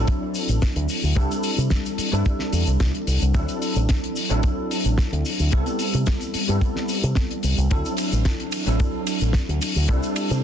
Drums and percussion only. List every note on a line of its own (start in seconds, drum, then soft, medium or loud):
0.07 kick loud
0.07 closed hi-hat loud
0.07 shaker medium
0.35 open hi-hat loud
0.35 shaker medium
0.49 closed hi-hat medium
0.49 shaker soft
0.62 kick loud
0.62 snare loud
0.62 closed hi-hat medium
0.62 shaker medium
0.76 closed hi-hat medium
0.89 open hi-hat loud
0.89 shaker medium
1.04 shaker soft
1.17 kick loud
1.17 closed hi-hat medium
1.17 shaker medium
1.31 closed hi-hat medium
1.31 shaker medium
1.43 open hi-hat loud
1.43 shaker medium
1.59 closed hi-hat medium
1.59 shaker medium
1.70 kick loud
1.70 snare loud
1.70 closed hi-hat medium
1.70 shaker medium
1.86 closed hi-hat medium
1.86 shaker soft
1.98 open hi-hat loud
1.98 shaker medium
2.13 closed hi-hat medium
2.13 shaker soft
2.26 kick loud
2.26 closed hi-hat medium
2.26 shaker medium
2.39 snare soft
2.53 open hi-hat loud
2.53 shaker medium
2.67 closed hi-hat medium
2.67 shaker soft
2.80 kick loud
2.80 snare loud
2.80 closed hi-hat medium
2.80 shaker medium
2.95 closed hi-hat medium
3.07 open hi-hat loud
3.07 shaker medium
3.22 closed hi-hat medium
3.22 shaker soft
3.35 kick loud
3.35 closed hi-hat medium
3.35 shaker medium
3.48 closed hi-hat medium
3.48 shaker soft
3.62 open hi-hat loud
3.62 shaker medium
3.76 closed hi-hat medium
3.76 shaker soft
3.89 kick loud
3.89 snare loud
3.89 closed hi-hat medium
3.89 shaker medium
4.04 closed hi-hat medium
4.16 open hi-hat loud
4.16 shaker medium
4.30 closed hi-hat medium
4.30 shaker medium
4.43 kick loud
4.43 closed hi-hat medium
4.43 shaker medium
4.71 open hi-hat loud
4.71 shaker medium
4.85 closed hi-hat medium
4.85 shaker soft
4.98 kick loud
4.98 snare loud
4.98 closed hi-hat medium
4.98 shaker medium
5.13 closed hi-hat medium
5.25 open hi-hat loud
5.25 shaker medium
5.39 shaker medium
5.52 kick loud
5.52 closed hi-hat medium
5.52 shaker medium
5.66 closed hi-hat soft
5.66 shaker soft
5.79 open hi-hat loud
5.79 shaker medium
5.94 closed hi-hat medium
5.94 shaker medium
6.06 kick loud
6.06 snare loud
6.06 closed hi-hat medium
6.06 shaker medium
6.21 closed hi-hat soft
6.21 shaker soft
6.34 open hi-hat loud
6.34 shaker medium
6.49 closed hi-hat medium
6.49 shaker soft
6.61 kick loud
6.61 closed hi-hat medium
6.61 shaker medium
6.76 snare soft
6.89 open hi-hat loud
6.89 shaker medium
7.04 closed hi-hat soft
7.04 shaker soft
7.15 kick loud
7.15 snare loud
7.15 closed hi-hat medium
7.15 shaker medium
7.31 closed hi-hat medium
7.43 open hi-hat loud
7.43 shaker medium
7.58 closed hi-hat soft
7.58 shaker soft
7.71 kick loud
7.71 closed hi-hat medium
7.71 shaker medium
7.85 closed hi-hat medium
7.85 shaker medium
7.97 open hi-hat loud
7.97 ride medium
7.97 shaker medium
8.12 closed hi-hat medium
8.12 shaker medium
8.25 kick medium
8.25 snare loud
8.25 closed hi-hat loud
8.25 shaker medium
8.40 closed hi-hat soft
8.52 open hi-hat loud
8.52 ride medium
8.52 shaker medium
8.67 closed hi-hat medium
8.67 shaker medium
8.80 kick loud
8.80 closed hi-hat medium
8.80 shaker medium
9.07 open hi-hat loud
9.07 ride loud
9.07 shaker medium
9.21 closed hi-hat medium
9.21 shaker medium
9.33 kick loud
9.33 snare loud
9.33 closed hi-hat medium
9.33 shaker medium
9.49 closed hi-hat medium
9.61 open hi-hat loud
9.61 ride loud
9.61 shaker medium
9.77 shaker medium
9.89 kick loud
9.89 closed hi-hat medium
9.89 shaker medium
10.03 closed hi-hat medium
10.03 shaker soft
10.16 open hi-hat loud
10.16 ride medium
10.16 shaker medium
10.30 closed hi-hat medium
10.30 shaker medium